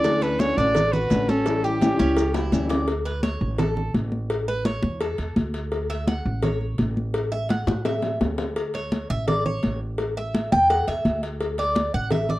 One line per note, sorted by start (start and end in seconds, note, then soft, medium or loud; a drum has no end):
0.00 0.51 D2 loud
0.00 0.24 D5 loud
0.00 high conga soft
0.04 0.38 D3 medium
0.04 0.39 A3 medium
0.04 0.40 C#4 medium
0.04 0.21 D4 medium
0.04 0.40 F#4 medium
0.04 cowbell loud
0.04 maracas medium
0.21 0.56 A4 medium
0.21 0.42 B4 loud
0.21 cowbell medium
0.21 high conga soft
0.21 maracas soft
0.39 0.56 D3 medium
0.39 0.57 A3 medium
0.39 0.57 C#4 medium
0.39 0.56 F#4 medium
0.39 0.59 C#5 loud
0.39 cowbell medium
0.39 high conga loud
0.39 maracas medium
0.57 1.07 A1 loud
0.57 0.75 A3 soft
0.57 0.75 C#4 soft
0.57 0.92 D4 loud
0.57 0.74 F#4 medium
0.57 0.94 D5 loud
0.57 maracas soft
0.75 muted nylon-string guitar stroke medium
0.75 cowbell loud
0.75 high conga soft
0.75 low conga medium
0.75 maracas medium
0.93 1.27 F#4 medium
0.93 1.31 B4 medium
0.93 high conga soft
0.93 low conga medium
0.93 maracas soft
1.10 1.94 A1 medium
1.10 1.27 D3 medium
1.10 1.28 A3 medium
1.10 1.28 C#4 medium
1.10 1.27 F#4 medium
1.10 cowbell medium
1.10 high conga loud
1.10 maracas medium
1.28 1.46 A3 soft
1.28 1.63 C#4 medium
1.28 1.46 C#4 soft
1.28 1.45 F#4 medium
1.28 1.66 A4 medium
1.28 high conga medium
1.28 maracas soft
1.46 1.80 E3 medium
1.46 1.81 G3 medium
1.46 1.81 C#4 medium
1.46 1.82 E4 medium
1.46 cowbell loud
1.46 high conga soft
1.46 maracas medium
1.64 1.98 G4 medium
1.64 2.71 G4 medium
1.64 high conga soft
1.64 maracas soft
1.81 1.98 E3 medium
1.81 1.99 G3 medium
1.81 1.99 C#4 medium
1.81 1.98 E4 medium
1.81 cowbell medium
1.81 high conga loud
1.81 maracas medium
1.99 2.49 C#2 medium
1.99 2.16 G3 soft
1.99 2.34 C#4 loud
1.99 2.17 C#4 soft
1.99 2.16 E4 medium
1.99 high conga medium
1.99 maracas soft
2.17 muted nylon-string guitar stroke medium
2.17 cowbell loud
2.17 high conga soft
2.17 maracas medium
2.35 2.69 E4 medium
2.35 cowbell medium
2.35 high bongo medium
2.35 high conga soft
2.35 maracas soft
2.51 3.36 D2 loud
2.51 2.69 E3 medium
2.51 2.69 G3 medium
2.51 2.70 C#4 medium
2.51 2.69 E4 medium
2.51 cowbell medium
2.51 high conga loud
2.51 maracas medium
2.70 2.88 G3 soft
2.70 2.88 C#4 soft
2.70 2.87 E4 soft
2.70 2.87 D5 medium
2.70 cowbell medium
2.70 low bongo medium
2.70 high conga soft
2.70 maracas soft
2.88 cowbell loud
2.88 high conga soft
3.06 3.23 B4 medium
3.06 cowbell medium
3.06 high conga soft
3.23 3.56 C#5 medium
3.23 cowbell medium
3.23 high conga loud
3.41 3.91 A1 loud
3.58 3.92 A4 medium
3.58 cowbell loud
3.58 high conga soft
3.58 low conga medium
3.77 high conga soft
3.77 low conga medium
3.94 4.77 A1 medium
3.94 cowbell medium
3.94 high conga medium
4.12 high conga medium
4.30 cowbell loud
4.30 high conga soft
4.48 4.65 B4 loud
4.48 high conga soft
4.65 4.99 C#5 medium
4.65 cowbell medium
4.65 high conga loud
4.83 5.16 E2 loud
4.83 high conga medium
5.01 5.34 A4 medium
5.01 cowbell loud
5.01 high conga soft
5.18 5.35 E2 medium
5.18 cowbell medium
5.18 high conga soft
5.36 6.20 D2 loud
5.36 cowbell medium
5.36 high conga loud
5.54 cowbell medium
5.54 high conga soft
5.72 cowbell loud
5.72 high conga soft
5.90 6.07 E5 medium
5.90 cowbell medium
5.90 high conga soft
6.07 6.41 F#5 medium
6.07 cowbell medium
6.07 high conga loud
6.25 6.75 A1 loud
6.42 6.76 C#5 medium
6.42 cowbell loud
6.42 high conga soft
6.42 low conga medium
6.61 high conga soft
6.78 7.62 A1 medium
6.78 cowbell medium
6.78 high conga medium
6.97 high conga medium
7.14 cowbell loud
7.14 high conga soft
7.32 7.49 E5 loud
7.32 high conga soft
7.49 7.83 F#5 medium
7.49 cowbell medium
7.49 high conga loud
7.67 8.17 A2 loud
7.67 high bongo medium
7.67 high conga loud
7.85 8.19 E5 medium
7.85 cowbell loud
7.85 low bongo loud
7.85 high conga soft
8.02 cowbell medium
8.02 low bongo medium
8.02 high conga soft
8.21 9.04 D2 medium
8.21 cowbell medium
8.21 low bongo medium
8.21 high conga medium
8.38 cowbell medium
8.38 low bongo medium
8.38 high conga soft
8.56 cowbell loud
8.56 high conga soft
8.74 9.08 C#5 medium
8.74 cowbell medium
8.74 high conga soft
8.92 cowbell medium
8.92 high conga medium
9.10 9.60 A1 loud
9.10 9.27 E5 loud
9.28 9.45 D5 medium
9.28 cowbell loud
9.28 high conga soft
9.28 low conga medium
9.46 9.79 C#5 medium
9.46 high conga soft
9.46 low conga medium
9.63 10.47 A1 medium
9.63 cowbell medium
9.63 high conga loud
9.98 cowbell loud
9.98 high conga soft
10.17 10.50 E5 loud
10.17 high conga soft
10.34 cowbell medium
10.34 high conga loud
10.52 10.85 E2 loud
10.52 10.69 G5 loud
10.52 high conga loud
10.70 10.87 F#5 medium
10.70 cowbell loud
10.70 high conga soft
10.88 11.04 E2 medium
10.88 11.21 E5 medium
10.88 cowbell medium
10.88 high conga soft
11.05 11.88 D2 medium
11.05 cowbell medium
11.05 high conga medium
11.23 cowbell medium
11.23 high conga soft
11.41 cowbell loud
11.41 high conga soft
11.58 11.92 D5 loud
11.58 cowbell medium
11.58 high conga soft
11.75 cowbell medium
11.75 high conga loud
11.94 12.39 A1 loud
11.94 12.11 F#5 loud
12.11 12.29 E5 medium
12.11 cowbell loud
12.11 high conga soft
12.11 low conga medium
12.29 12.39 D5 medium
12.29 high conga soft
12.29 low conga medium